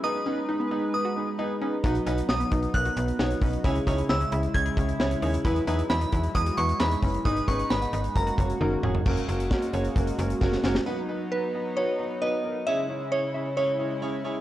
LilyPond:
<<
  \new Staff \with { instrumentName = "Synth bell" } { \time 4/4 \key b \major \tempo 4 = 133 dis'''2 dis'''4. r8 | r4 dis'''4 fis'''2 | r4 e'''4 gis'''2 | r4 b''4 dis'''8 cis'''8 b''4 |
dis'''8 cis'''8 b''4 ais''4. r8 | r1 | r4 b'4 cis''4 dis''4 | e''4 cis''4 cis''4. r8 | }
  \new Staff \with { instrumentName = "Grand piano" } { \time 4/4 \key b \major <b dis' gis' b'>16 r16 <b dis' gis' b'>16 r16 <b dis' gis' b'>16 r16 <b dis' gis' b'>16 r16 <b dis' gis' b'>16 r16 <b dis' gis' b'>16 r16 <b dis' gis' b'>16 r16 <b dis' gis' b'>16 r16 | <b dis' fis' b'>16 r16 <b dis' fis' b'>16 r16 <b dis' fis' b'>16 r16 <b dis' fis' b'>16 r16 <b dis' fis' ais'>16 r16 <b dis' fis' b'>16 r16 <b dis' fis' cis''>16 r16 <b dis' fis' b'>16 r16 | <cis' e' gis' cis''>16 r16 <cis' e' gis' cis''>16 r16 <cis' e' gis' cis''>16 r16 <cis' e' gis' e''>16 r16 <cis' e' gis' cis''>16 r16 <cis' e' gis' cis''>16 r16 <cis' e' gis' cis''>16 r16 <cis' e' gis' cis''>16 r16 | <b e' gis' b'>16 r16 <b e' gis' b'>16 r16 <b e' gis' b'>16 r16 <b e' gis' b'>16 r16 <b e' gis' b'>16 r16 <b e' gis' b'>16 r16 <b e' gis' b'>16 r16 <b e' gis' b'>16 r16 |
<b dis' gis' b'>16 r16 <b dis' gis' b'>16 r16 <b dis' gis' b'>16 r16 <b dis' gis' b'>16 r16 <ais cis' fis' ais'>16 r16 <ais cis' fis' cis''>16 r16 <ais cis' fis' ais'>16 r16 <ais cis' fis' gis'>16 r16 | <ais cis' fis' ais'>16 r16 <ais cis' fis' ais'>16 r16 <ais cis' fis' ais'>16 r16 <ais cis' fis' cis''>16 r16 <ais cis' fis' ais'>16 r16 <ais cis' fis' ais'>16 r16 <ais cis' fis' ais'>16 r16 <ais cis' fis' ais'>16 r16 | <b dis' fis' b'>16 r16 <b dis' fis' b'>16 r16 <b dis' fis' b'>16 r16 <b dis' fis' b'>16 r16 <b dis' fis' b'>16 r16 <b dis' fis' b'>16 r16 <b dis' fis' b'>16 r16 <b dis' fis' ais'>16 r16 | <cis' e' gis' cis''>16 r16 <cis' e' gis' cis''>16 r16 <cis' e' gis' cis''>16 r16 <cis' e' gis' e''>16 r16 <cis' e' gis' cis''>16 r16 <cis' e' gis' cis''>16 r16 <cis' e' gis' cis''>16 r16 <cis' e' gis' cis''>16 r16 | }
  \new Staff \with { instrumentName = "Synth arpeggio sound" } { \time 4/4 \key b \major dis'8 cis'8 dis'16 b16 dis'8 r16 fis'8 r16 dis'8 cis'8 | dis'8 cis'8 dis'16 b16 dis'8 r16 fis'8 r16 dis'8 cis'8 | e'8 dis'8 e'16 cis'16 e'8 r16 gis'8 r16 e'8 dis'8 | e'8 dis'8 e'16 dis'16 e'8 r16 fis'8 r16 dis'8 cis'8 |
dis'8 cis'8 dis'16 b16 dis'8 r16 fis'8 r16 dis'8 cis'8 | r1 | r1 | r1 | }
  \new Staff \with { instrumentName = "Analog synth pad" } { \time 4/4 \key b \major << { b'1 | r1 | e'1~ | e'1 |
b'2 fis'2 | fis'1 | dis'1 | e'1 | } \\ { <gis dis'>1 | <fis b>1 | <cis gis>1 | <fis gis>1 |
dis'2 ais2 | <gis ais>1 | <fis b>1 | <cis gis>1 | } >> }
  \new Staff \with { instrumentName = "FM bass" } { \clef bass \time 4/4 \key b \major r1 | b,,8 b,,8 b,,8 b,,8 b,,8 b,,8 b,,8 b,,8 | cis,8 cis,8 cis,8 cis,8 cis,8 cis,8 cis,8 dis,8 | e,8 e,8 e,8 e,8 e,8 e,8 e,8 fis,,8 |
gis,,8 gis,,8 gis,,8 gis,,8 fis,,8 fis,,8 fis,,8 e,,8 | fis,,8 fis,,8. r16 fis,,8 fis,,8 fis,,8 fis,,8 fis,,8 | r1 | r1 | }
  \new DrumStaff \with { instrumentName = "Drums" } \drummode { \time 4/4 r4 r4 r4 r4 | <hh bd>16 hh16 hh16 hh16 sn16 hh16 <hh bd>16 hh16 <hh bd>16 hh16 hh16 hh16 sn16 hh16 <hho bd>16 hh16 | <hh bd>16 hh16 <hh bd>16 hh16 sn16 hh16 hh16 hh16 <hh bd>16 hh16 <hh bd>16 hh16 sn16 hh16 hho16 hh16 | <hh bd>16 hh16 hh16 hh16 sn16 hh16 <hh bd>16 hh16 <hh bd>16 hh16 hh16 hh16 <hc sn>16 hh16 <hho bd>16 hh16 |
<hh bd>16 hh16 <hh bd>16 hh16 sn16 hh16 hh16 hh16 <hh bd>16 hh16 <hh bd>16 hh16 tommh8 toml16 tomfh16 | <cymc bd>16 hh16 hh16 hh16 <bd sn>16 hh16 hh16 hh16 <hh bd>16 hh16 hh16 hh16 <bd sn>16 sn16 sn16 sn16 | r4 r4 r4 r4 | r4 r4 r4 r4 | }
>>